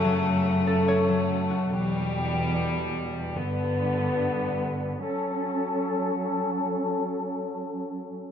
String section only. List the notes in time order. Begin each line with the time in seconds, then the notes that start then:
Already playing: F#2 C#3 A3
1.71 E2 B2 G3
3.38 G2 D3 B3
5.05 F#3 C#4 A4